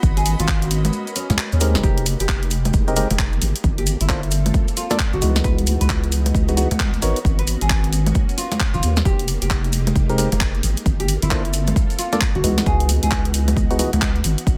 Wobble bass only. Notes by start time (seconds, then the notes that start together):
0.03 G#1
0.39 G#1
1.30 C#2
1.53 D#2
1.75 F#1
1.83 F1
2.20 F1
2.74 F1
3.10 F1
3.41 G#1
3.64 G1
4.01 G1
5.13 G1
5.22 C#2
5.44 C#2
5.81 C#2
6.35 C#2
6.71 C#2
7.02 G#1
7.25 G#1
7.62 G#1
8.74 G#1
8.83 D#2
9.05 F1
9.42 F1
9.96 F1
10.32 F1
10.63 G#1
10.86 G1
11.22 G1
12.35 G1
12.44 C#2
12.66 C#2
13.03 C#2
13.57 C#2
13.93 C#2
14.24 G#1
14.47 G#1